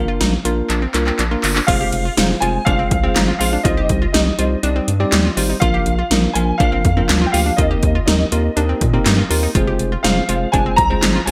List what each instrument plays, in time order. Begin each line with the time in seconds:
Already playing: tine electric piano A#3 D4 F4 A#4, grand piano F5
0.08 synth arpeggio sound F4
0.20 analog synth bass A#1, synth arpeggio sound D#4, snare, closed hi-hat
0.45 analog synth bass A#1, tine electric piano A#3 D4 F4 A#4, synth arpeggio sound F4, closed hi-hat
0.70 analog synth bass A#1, synth arpeggio sound D4, clap, closed hi-hat
0.82 synth arpeggio sound C4
0.94 analog synth bass C2, tine electric piano A#3 D4 F4 A#4, clap, closed hi-hat
1.07 synth arpeggio sound C4, clap
1.19 analog synth bass A#1, synth arpeggio sound D4, clap, closed hi-hat
1.31 tine electric piano A#3 D4 F4 A#4, synth arpeggio sound F4
1.44 analog synth bass G1, synth arpeggio sound F4, clap, open hi-hat
1.56 synth arpeggio sound D4, clap
1.67 analog synth bass F1, tine electric piano G#3 C4 F4 G#4 C5, synth arpeggio sound F4, grand piano F5, kick, closed hi-hat, crash
1.81 synth arpeggio sound G4
1.92 analog synth bass F1, closed hi-hat
2.05 synth arpeggio sound F4
2.17 analog synth bass F1, tine electric piano G#3 C4 F4 G#4 C5, synth arpeggio sound D#4, snare, closed hi-hat
2.40 analog synth bass F1, tine electric piano G#3 C4 F4 G#4 C5, synth arpeggio sound F4, grand piano G#5, closed hi-hat
2.65 analog synth bass F1, tine electric piano G#3 C4 F4 G#4 C5, synth arpeggio sound D4, grand piano F5, kick, closed hi-hat
2.79 synth arpeggio sound C4
2.91 analog synth bass C2, kick, closed hi-hat
3.03 tine electric piano G#3 C4 F4 G#4 C5, synth arpeggio sound C4
3.16 analog synth bass G#1, synth arpeggio sound D#4, snare, clap, closed hi-hat
3.28 synth arpeggio sound F4
3.39 analog synth bass A#1, tine electric piano G#3 C4 F4 G#4 C5, synth arpeggio sound F4, grand piano F5, open hi-hat
3.53 synth arpeggio sound D4
3.63 analog synth bass C2, tine electric piano G3 C4 D#4 G4 C5, synth arpeggio sound F4, grand piano D#5, kick, closed hi-hat
3.77 synth arpeggio sound G4
3.89 analog synth bass C2, kick, closed hi-hat
4.02 synth arpeggio sound F4
4.13 analog synth bass C2, tine electric piano G3 C4 D#4 G4 D#5, synth arpeggio sound D#4, grand piano D#5, snare, closed hi-hat
4.39 analog synth bass C2, tine electric piano G3 C4 D#4 G4 C5, synth arpeggio sound F4, closed hi-hat
4.63 analog synth bass C2, tine electric piano G3 C4 D#4 G4 D5, synth arpeggio sound D4, closed hi-hat
4.76 synth arpeggio sound C4
4.88 analog synth bass G2, closed hi-hat
5.00 tine electric piano G3 C4 D#4 G4 D5, synth arpeggio sound C4
5.12 analog synth bass D#2, synth arpeggio sound D#4, snare, clap, closed hi-hat
5.25 synth arpeggio sound F4
5.37 analog synth bass G#1, tine electric piano G3 C4 D#4 G4 C5, synth arpeggio sound F4, open hi-hat
5.49 synth arpeggio sound D#4
5.60 analog synth bass A#1, tine electric piano F3 A#3 D4 F4 A#4, synth arpeggio sound F4, grand piano F5, kick, closed hi-hat
5.74 synth arpeggio sound G4
5.86 analog synth bass A#1, closed hi-hat
5.99 synth arpeggio sound F4
6.11 analog synth bass A#1, tine electric piano F3 A#3 D4 F4 A#4, synth arpeggio sound D#4, snare, closed hi-hat
6.33 analog synth bass A#1, tine electric piano F3 A#3 D4 F4 A#4, synth arpeggio sound F4, grand piano G#5, closed hi-hat
6.58 analog synth bass A#1, tine electric piano F3 A#3 D4 F4 A#4, synth arpeggio sound D4, grand piano F5, kick, closed hi-hat
6.72 synth arpeggio sound C4
6.85 analog synth bass F2, kick, closed hi-hat
6.97 tine electric piano F3 A#3 D4 F4 A#4, synth arpeggio sound C4
7.09 analog synth bass D2, synth arpeggio sound D4, snare, clap, closed hi-hat
7.21 synth arpeggio sound F4
7.26 grand piano G5
7.32 analog synth bass D2, tine electric piano F3 A#3 D4 F4 G4, synth arpeggio sound F4, grand piano F5, open hi-hat
7.46 synth arpeggio sound D4
7.57 analog synth bass D#2, tine electric piano A#3 C4 D#4 G4 A#4, synth arpeggio sound F4, grand piano D#5, kick, closed hi-hat
7.71 synth arpeggio sound G4
7.83 analog synth bass D#2, kick, closed hi-hat
7.95 synth arpeggio sound F4
8.06 analog synth bass D#2, tine electric piano A#3 C4 D#4 G4 A#4, synth arpeggio sound D#4, grand piano D#5, snare, closed hi-hat
8.32 analog synth bass D#2, tine electric piano A#3 C4 D#4 G4 A#4, synth arpeggio sound F4, closed hi-hat
8.57 analog synth bass D#2, tine electric piano A#3 C4 D#4 G4 A#4, synth arpeggio sound D4, closed hi-hat
8.69 synth arpeggio sound C4
8.81 analog synth bass A#2, kick, closed hi-hat
8.94 tine electric piano A#3 C4 D#4 G4 A#4, synth arpeggio sound C4
9.06 analog synth bass G2, synth arpeggio sound D#4, snare, clap, closed hi-hat
9.18 synth arpeggio sound F4
9.30 analog synth bass D#2, tine electric piano A#3 C4 D#4 G4 A#4, synth arpeggio sound F4, open hi-hat
9.43 synth arpeggio sound D#4
9.55 analog synth bass F1, tine electric piano G#3 C4 F4 G#4 C5, synth arpeggio sound F4, kick, closed hi-hat
9.67 synth arpeggio sound G4
9.79 analog synth bass F1, closed hi-hat
9.92 synth arpeggio sound F4
10.03 analog synth bass F1, tine electric piano G#3 C4 F4 G#4 C5, synth arpeggio sound D#4, grand piano F5, snare, closed hi-hat
10.29 analog synth bass F1, tine electric piano G#3 C4 F4 G#4 C5, synth arpeggio sound F4, closed hi-hat
10.52 analog synth bass F1, tine electric piano G#3 C4 F4 G#4 C5, synth arpeggio sound D4, grand piano G#5, kick, closed hi-hat
10.66 synth arpeggio sound C4
10.76 analog synth bass C2, grand piano A#5, kick, closed hi-hat
10.90 tine electric piano G#3 C4 F4 G#4 C5, synth arpeggio sound C4
11.03 analog synth bass G#1, synth arpeggio sound D#4, snare, clap, closed hi-hat
11.15 synth arpeggio sound F4
11.26 analog synth bass A#1, tine electric piano G#3 C4 F4 G#4 C5, synth arpeggio sound F4, grand piano G#5, open hi-hat